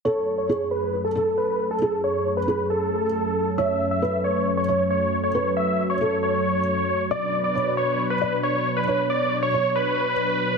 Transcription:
0.05 analog synth pad F#2 F#3 A3 C#4, felt piano A4, supersaw synth C#5
0.38 supersaw synth C#5
0.49 felt piano G#4
0.71 supersaw synth B4
1.04 supersaw synth A4
1.15 felt piano A4
1.38 supersaw synth B4
1.71 supersaw synth A4
1.82 felt piano G#4
2.04 supersaw synth C#5
2.37 supersaw synth B4
2.48 felt piano G#4
2.70 supersaw synth A4
3.58 felt piano C#5, supersaw synth E5
3.91 supersaw synth E5
4.02 felt piano B4
4.24 supersaw synth C#5
4.57 supersaw synth C#5
4.68 felt piano C#5
4.91 supersaw synth C#5
5.24 supersaw synth C#5
5.35 felt piano B4
5.57 supersaw synth E5
5.90 supersaw synth C#5
6.01 felt piano A4
6.23 supersaw synth C#5
7.11 analog synth pad B2 D4 B4, felt piano D5, supersaw synth D5
7.44 supersaw synth D5
7.55 felt piano C#5
7.77 supersaw synth C#5
8.10 supersaw synth B4
8.21 felt piano D5
8.43 supersaw synth C#5
8.77 supersaw synth B4
8.87 felt piano C#5, analog synth pad C#5
9.10 supersaw synth D5
9.43 supersaw synth C#5
9.54 felt piano C#5
9.76 supersaw synth B4

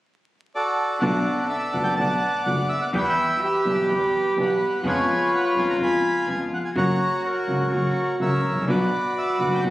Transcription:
0.55 bandoneon F#4 A4 D5
1.00 grand piano B1 B2 D3 A3 B3 F#4, upright bass B1, cello D4, bandoneon A4 D5 F#5
1.49 cello B3, bandoneon E5
1.73 grand piano F#1 F#2 D3 A3 B3 F#4, upright bass F#1, bandoneon F#5
1.84 bandoneon G5
1.96 grand piano B1 B2 D3 A3 B3 F#4, upright bass B1, bandoneon D5 F#5 A5
2.44 grand piano F#1 F#2 D3 A3 B3 F#4, upright bass F#1, bandoneon F#5
2.69 bandoneon E5
2.81 bandoneon F#5
2.93 grand piano E2 E3 G3 B3 G4, upright bass E2, cello E4, bandoneon G5
2.98 bandoneon B4 E5
3.03 bandoneon F#5
3.09 bandoneon G5
3.41 cello G4, bandoneon G4 B4 E5
3.65 grand piano B1 B2 E3 G3 B3 G4, upright bass B1
3.90 upright bass E2, grand piano E2 E3 G3 B3 G4
4.37 upright bass B1, grand piano B1 B2 E3 G3 B3 G4, bandoneon B4
4.43 bandoneon F#5
4.83 upright bass F2, grand piano F2 C#3 F3 G#3 B3 F4, cello F4, bandoneon B4 C#5
4.88 bandoneon G#5
5.35 bandoneon F#5
5.54 grand piano F2 C#3 F3 G#3 B3 F4, upright bass F2
5.59 bandoneon G#5
5.70 bandoneon A#5
5.78 grand piano F2 C#3 F3 G#3 B3 F4, upright bass F2
5.83 bandoneon G#5 B5
6.26 grand piano F2 C#3 F3 G#3 B3 F4, upright bass F2, bandoneon G#5
6.54 bandoneon F#5
6.65 bandoneon G#5
6.75 upright bass F#1, grand piano F#2 C#3 F#3 A#3 F#4, cello F#4, bandoneon C#5 F#5 A#5
7.24 bandoneon A#4 C#5 F#5
7.47 upright bass C#2, grand piano C#2 C#3 F#3 A#3 F#4
7.70 upright bass F#1, grand piano F#2 C#3 F#3 A#3 F#4, cello F#4
8.19 grand piano C#2 C#3 F#3 A#3 F#4, upright bass C#2, bandoneon A#4 C#5 E5
8.50 grand piano G#1, upright bass G#1
8.55 upright bass A1, grand piano A1
8.62 upright bass A#1, grand piano A#1
8.67 upright bass B1, grand piano B1 B2 D3 F#3 B3 F#4, cello F#4, bandoneon B4 D5 F#5
9.18 bandoneon E5
9.39 upright bass F#1, grand piano F#1 F#2 D3 F#3 B3 F#4, bandoneon F#5
9.55 bandoneon G5
9.63 grand piano B1 B2 D3 F#3 B3 F#4, upright bass B1

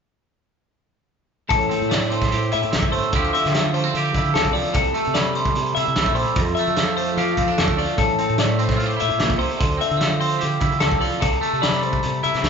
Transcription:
1.49 fingered electric bass A1, clean electric guitar A2 A4, kick, closed hi-hat
1.60 closed hi-hat
1.69 clean electric guitar C4, closed hi-hat
1.81 fingered electric bass A2, closed hi-hat
1.90 clean electric guitar A3 D5, snare, closed hi-hat
2.01 snare, closed hi-hat
2.11 clean electric guitar C4 C5, closed hi-hat
2.22 kick, snare, closed hi-hat
2.32 fingered electric bass A2, clean electric guitar G4, closed hi-hat
2.42 closed hi-hat
2.52 fingered electric bass A2, clean electric guitar E4 E5, closed hi-hat
2.62 fingered electric bass A2, closed hi-hat
2.71 fingered electric bass A1, clean electric guitar C4, snare, closed hi-hat
2.82 fingered electric bass G1, kick
2.91 clean electric guitar A3 C5, open hi-hat
3.03 closed hi-hat
3.12 fingered electric bass D2, clean electric guitar D3 F3 C4 E4 G4, kick, closed hi-hat
3.24 closed hi-hat
3.33 clean electric guitar C4 E5, closed hi-hat
3.44 fingered electric bass D3, snare, closed hi-hat
3.54 clean electric guitar F3, snare, closed hi-hat
3.64 closed hi-hat
3.74 clean electric guitar A3 C5, open hi-hat
3.84 clean electric guitar C4, closed hi-hat
3.94 fingered electric bass D3, clean electric guitar G4, closed hi-hat
4.05 closed hi-hat
4.15 fingered electric bass D3, clean electric guitar E4, kick, closed hi-hat
4.25 fingered electric bass D3, closed hi-hat
4.34 fingered electric bass D2, clean electric guitar C4 A4, snare, closed hi-hat
4.45 fingered electric bass C2, kick, closed hi-hat
4.53 clean electric guitar F3 D5, open hi-hat
4.65 closed hi-hat
4.73 fingered electric bass C2, clean electric guitar C3 A4, kick, closed hi-hat
4.84 closed hi-hat
4.94 clean electric guitar A3, closed hi-hat
5.04 fingered electric bass C3, closed hi-hat
5.14 clean electric guitar G3 D5, snare, closed hi-hat
5.25 closed hi-hat
5.35 clean electric guitar C5, closed hi-hat
5.45 kick, closed hi-hat
5.55 fingered electric bass C3, closed hi-hat
5.66 closed hi-hat
5.75 fingered electric bass C3, clean electric guitar E4 E5, closed hi-hat
5.85 fingered electric bass C3, closed hi-hat
5.95 fingered electric bass C2, clean electric guitar A3, snare, closed hi-hat
6.06 fingered electric bass A#1, kick, closed hi-hat
6.15 clean electric guitar G3 C5, open hi-hat
6.26 closed hi-hat
6.35 fingered electric bass F2, clean electric guitar F2, kick, closed hi-hat
6.46 closed hi-hat
6.55 clean electric guitar A3 E5, closed hi-hat
6.66 fingered electric bass F3, closed hi-hat
6.76 clean electric guitar F3, snare, closed hi-hat
6.87 closed hi-hat
6.97 clean electric guitar A3 C5, open hi-hat
7.07 closed hi-hat
7.17 fingered electric bass F3, clean electric guitar F4 G4, closed hi-hat
7.28 closed hi-hat
7.37 fingered electric bass F3, clean electric guitar C4, kick, closed hi-hat
7.46 fingered electric bass F3, clean electric guitar D4, closed hi-hat
7.58 fingered electric bass F2, clean electric guitar A3 A4, snare, closed hi-hat
7.68 fingered electric bass D2, kick, closed hi-hat
7.78 clean electric guitar F3 D5, open hi-hat
7.88 closed hi-hat
7.97 fingered electric bass A1, clean electric guitar A2 A4, kick, closed hi-hat
8.08 closed hi-hat
8.18 clean electric guitar C4, closed hi-hat
8.29 fingered electric bass A2, closed hi-hat
8.38 clean electric guitar A3 D5, snare, closed hi-hat
8.49 closed hi-hat
8.59 clean electric guitar C4 C5, closed hi-hat
8.69 kick, snare, closed hi-hat
8.77 clean electric guitar F4, closed hi-hat
8.81 fingered electric bass A2
8.86 clean electric guitar G4
8.90 closed hi-hat
8.97 clean electric guitar E4 E5, closed hi-hat
9.02 fingered electric bass A2
9.10 fingered electric bass A2, closed hi-hat
9.18 fingered electric bass A1, clean electric guitar A#2, snare, closed hi-hat
9.30 fingered electric bass C2, kick, snare, closed hi-hat
9.38 clean electric guitar C3 C5, open hi-hat
9.51 closed hi-hat
9.58 fingered electric bass D2, clean electric guitar D3, kick, closed hi-hat
9.71 closed hi-hat
9.77 clean electric guitar C4 E5, closed hi-hat
9.91 fingered electric bass D3, closed hi-hat
9.97 clean electric guitar F3, snare, closed hi-hat
10.11 closed hi-hat
10.20 clean electric guitar C4 C5, open hi-hat
10.31 closed hi-hat
10.39 fingered electric bass D3, clean electric guitar G4, closed hi-hat
10.51 closed hi-hat
10.60 fingered electric bass D3, clean electric guitar E4, kick, closed hi-hat
10.71 fingered electric bass D3, closed hi-hat
10.80 fingered electric bass D2, clean electric guitar C4 A4, snare, closed hi-hat
10.91 fingered electric bass C2, kick, closed hi-hat
11.00 clean electric guitar F3 D5, open hi-hat
11.12 closed hi-hat
11.20 fingered electric bass C2, clean electric guitar C3 A4, kick, closed hi-hat
11.33 closed hi-hat
11.41 clean electric guitar A3, closed hi-hat
11.53 fingered electric bass C3, closed hi-hat
11.62 clean electric guitar G3 D5, snare, closed hi-hat
11.73 snare, closed hi-hat
11.83 clean electric guitar C5, closed hi-hat
11.92 kick, closed hi-hat
12.03 fingered electric bass C3, closed hi-hat
12.14 closed hi-hat
12.23 fingered electric bass C3, clean electric guitar E4 E5, closed hi-hat
12.34 fingered electric bass C3, snare, closed hi-hat
12.43 fingered electric bass C2, clean electric guitar A3, snare, closed hi-hat

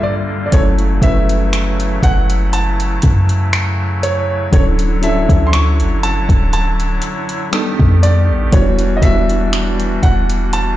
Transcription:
Already playing: 808-style bass G2, pipe organ D3 G3 A#3 F4, tine electric piano G3 A#3 D4 F4 A4
0.03 grand piano D5
0.46 grand piano D5
0.52 808-style bass F#1, pipe organ C#3 F#3 A3 E4, tine electric piano F#3 A3 C#4 E4 A4, grand piano C#5, kick, closed hi-hat
0.79 closed hi-hat
1.02 808-style bass F#1, tine electric piano F#3 A3 C#4 E4 B4, grand piano E5, kick, closed hi-hat
1.29 closed hi-hat
1.53 finger snap, closed hi-hat
1.80 closed hi-hat
2.03 808-style bass F#1, grand piano F#5, kick, closed hi-hat
2.30 closed hi-hat
2.53 grand piano A5, closed hi-hat
2.80 closed hi-hat
3.02 808-style bass F#2, kick, closed hi-hat
3.29 closed hi-hat
3.53 finger snap, closed hi-hat
4.03 grand piano C#5, closed hi-hat
4.51 808-style bass D1, pipe organ D3 E4 C#5, tine electric piano F#3 C#4 D4 E4 A4, grand piano C#5, kick, closed hi-hat
4.79 closed hi-hat
5.01 tine electric piano F#3 C#4 D4 E4 A4, grand piano E5, closed hi-hat
5.29 808-style bass D2, kick, closed hi-hat
5.47 grand piano C6
5.53 grand piano C#6, finger snap, closed hi-hat
5.80 808-style bass F#1, closed hi-hat
6.03 grand piano A5, closed hi-hat
6.29 808-style bass D1, kick, closed hi-hat
6.53 grand piano A5, closed hi-hat
6.80 closed hi-hat
7.02 closed hi-hat
7.29 closed hi-hat
7.52 pipe organ D#3 A3 B3 G4, tine electric piano G3 B3 D4 D#4 A4, finger snap, closed hi-hat
7.80 808-style bass F2, kick
8.03 grand piano D5, closed hi-hat
8.30 808-style bass A1
8.52 808-style bass E1, pipe organ E3 G3 D4 F#4, tine electric piano G3 B3 D4 E4 F#4, grand piano C#5, kick, closed hi-hat
8.79 closed hi-hat
8.97 grand piano D#5
9.02 808-style bass E1, tine electric piano G3 B3 D4 E4 F#4, grand piano E5, kick, closed hi-hat
9.29 closed hi-hat
9.53 finger snap, closed hi-hat
9.80 closed hi-hat
10.03 808-style bass E1, grand piano F#5, kick, closed hi-hat
10.30 closed hi-hat
10.53 grand piano A5, closed hi-hat

